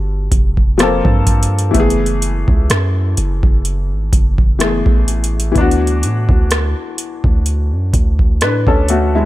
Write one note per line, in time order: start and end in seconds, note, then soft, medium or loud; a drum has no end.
0.00 0.29 G1 medium
0.00 0.73 G3 medium
0.00 0.75 B3 medium
0.00 0.76 F#4 medium
0.00 0.78 A4 medium
0.32 1.02 F1 loud
0.32 kick medium
0.32 closed hi-hat medium
0.57 kick medium
0.78 1.74 F3 medium
0.78 1.74 A#3 medium
0.78 1.75 C4 medium
0.78 cross-stick loud
0.78 closed hi-hat medium
0.82 1.76 A4 medium
1.05 1.72 G2 loud
1.05 kick medium
1.27 kick medium
1.27 closed hi-hat medium
1.43 closed hi-hat medium
1.59 closed hi-hat medium
1.71 4.54 E3 medium
1.71 4.56 A3 medium
1.71 kick medium
1.71 closed hi-hat medium
1.75 2.45 F#1 loud
1.75 4.57 B3 medium
1.80 4.59 G#4 medium
1.90 closed hi-hat soft
2.06 closed hi-hat soft
2.22 closed hi-hat medium
2.48 2.69 C#2 loud
2.48 kick medium
2.70 3.16 F#2 loud
2.70 cross-stick loud
2.70 closed hi-hat medium
3.17 3.42 F#1 loud
3.17 closed hi-hat medium
3.43 3.93 F#1 loud
3.43 kick loud
3.65 closed hi-hat medium
3.91 4.12 G#1 medium
4.13 4.83 F#1 loud
4.13 kick medium
4.13 closed hi-hat medium
4.38 kick medium
4.59 5.50 E3 medium
4.59 5.55 A3 medium
4.59 5.53 B3 medium
4.59 cross-stick loud
4.59 closed hi-hat medium
4.63 5.57 G#4 medium
4.86 5.53 A1 loud
4.86 kick medium
5.08 closed hi-hat medium
5.24 closed hi-hat medium
5.40 closed hi-hat medium
5.52 8.83 E3 medium
5.52 8.37 B3 medium
5.52 kick medium
5.52 closed hi-hat medium
5.56 6.05 D2 loud
5.56 8.38 D4 medium
5.61 8.40 F#4 medium
5.71 closed hi-hat soft
5.87 closed hi-hat soft
6.03 6.28 A2 loud
6.03 closed hi-hat medium
6.29 6.75 D2 loud
6.29 kick medium
6.51 cross-stick loud
6.51 closed hi-hat medium
6.98 closed hi-hat medium
7.24 7.73 D2 loud
7.24 kick medium
7.46 closed hi-hat medium
7.72 7.93 F#2 medium
7.94 8.43 D2 loud
7.94 kick medium
7.94 closed hi-hat medium
8.19 kick medium
8.41 8.66 A2 medium
8.41 8.66 D4 medium
8.41 8.66 B4 medium
8.41 cross-stick loud
8.41 closed hi-hat medium
8.67 9.25 D2 medium
8.67 8.88 C#4 medium
8.67 8.88 A4 medium
8.67 kick medium
8.88 9.14 A3 medium
8.88 9.13 F#4 medium
8.88 closed hi-hat medium
9.15 9.25 G#3 medium
9.15 9.25 E4 medium